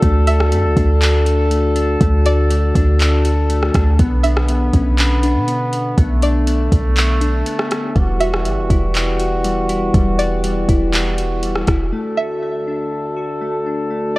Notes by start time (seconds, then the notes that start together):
Already playing: D3 D4 F#4 A4
0.03 D2 A3, kick, closed hi-hat
0.27 F#4 E5, closed hi-hat
0.40 cross-stick
0.52 F#2 A3, closed hi-hat
0.64 D2
0.77 D2 D4, kick, closed hi-hat
1.02 clap, closed hi-hat
1.26 F#4, closed hi-hat
1.51 A3, closed hi-hat
1.76 D4, closed hi-hat
2.01 D2 A3, kick, closed hi-hat
2.25 F#4 D5, closed hi-hat
2.50 A3, closed hi-hat
2.75 D2 D4, kick, closed hi-hat
3.00 clap, closed hi-hat
3.25 F#4, closed hi-hat
3.50 A3, closed hi-hat
3.63 cross-stick
3.74 D2 D4, kick, cross-stick, closed hi-hat
3.99 B1 B3, kick, closed hi-hat
4.23 D4 E5, closed hi-hat
4.37 cross-stick
4.49 B3, closed hi-hat
4.74 B1 C#4, kick, closed hi-hat
4.98 clap, closed hi-hat
5.23 D4, closed hi-hat
5.36 B2
5.48 B3, closed hi-hat
5.73 closed hi-hat
5.98 B1 A3 B3, kick, closed hi-hat
6.22 D4 D5, closed hi-hat
6.47 B3, closed hi-hat
6.72 B1, kick, closed hi-hat
6.97 clap, closed hi-hat
7.21 D4, closed hi-hat
7.46 B3, closed hi-hat
7.59 cross-stick
7.71 C#4, cross-stick, closed hi-hat
7.96 E1 E3 G3 B3 F#4, kick, closed hi-hat
8.20 F#4 E5, closed hi-hat
8.34 cross-stick
8.45 G1 G3, closed hi-hat
8.58 E1
8.70 E1 E4, kick, closed hi-hat
8.95 clap, closed hi-hat
9.20 F#4, closed hi-hat
9.44 G3, closed hi-hat
9.69 E4, closed hi-hat
9.94 E1 G3, kick, closed hi-hat
10.19 F#4 D5, closed hi-hat
10.44 G3, closed hi-hat
10.68 E1 E4, kick, closed hi-hat
10.93 clap, closed hi-hat
11.18 F#4, closed hi-hat
11.42 G3, closed hi-hat
11.55 cross-stick
11.67 E1 E4, kick, cross-stick, closed hi-hat
11.92 D2 D3 A3 F#4 A4
12.17 F#4 E5
12.42 A3
12.67 D4
13.16 F#4
13.41 A3
13.66 D4
13.91 A3